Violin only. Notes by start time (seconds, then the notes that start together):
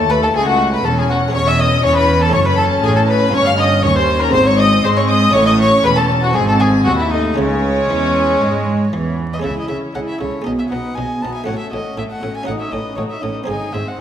0.10 B4
0.23 A4
0.37 G#4
0.48 F#4
0.73 B4
0.85 A4
0.97 G#4
1.10 F#4
1.35 C#5
1.47 E5
1.59 D#5
1.85 C#5
1.97 B4
2.22 A4
2.32 C#5
2.45 B4
2.57 A4
2.85 G#4
2.96 A4
3.08 B4
3.34 C#5
3.46 F5
3.58 D#5
3.82 C#5
3.96 C5
4.21 A#4
4.34 C5
4.46 C#5
4.58 D#5
4.84 C5
4.96 C#5
5.09 D#5
5.33 C#5
5.46 D#5
5.60 C#5
5.84 B4
5.96 A4
6.22 F#4
6.35 G#4
6.48 A4
6.60 G#4
6.84 F#4
6.97 E4
7.10 D#4
7.36 C#4
9.33 D#5
9.44 E5
9.59 D#5
9.68 E5
9.95 F#5
10.08 E5
10.20 C#5
10.45 D#5
10.59 E5
10.69 F#5
10.95 G#5
11.21 A5
11.34 G#5
11.46 F#5
11.59 E5
11.72 D#5
11.98 E5
12.11 F#5
12.37 G#5
12.47 F#5
12.60 E5
12.71 D#5
12.96 C#5
13.10 E5
13.21 D#5
13.48 G#5
13.73 E5
13.88 F#5